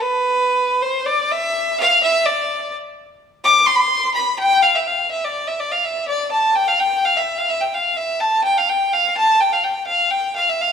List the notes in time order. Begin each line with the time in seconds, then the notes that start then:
0.01 B4
0.81 C5
1.05 D5
1.31 E5
1.80 F5
2.03 E5
2.25 D5
3.44 D6
3.66 C6
3.76 B5 C6
4.14 B5
4.39 G5
4.63 F5
4.75 E5
4.87 F5
5.11 E5
5.24 D5
5.47 E5
5.60 D5
5.71 F5
5.84 E5
6.08 D5
6.31 A5
6.55 G5
6.67 F5
6.79 G5
7.04 F5
7.16 E5
7.38 F5
7.49 E5
7.61 G5
7.74 F5
7.96 E5
8.20 A5
8.43 G5
8.57 F5
8.69 G5
8.93 F5
9.17 A5
9.40 G5
9.52 F5
9.63 G5
9.86 F5
10.10 G5
10.36 F5
10.49 E5
10.61 F5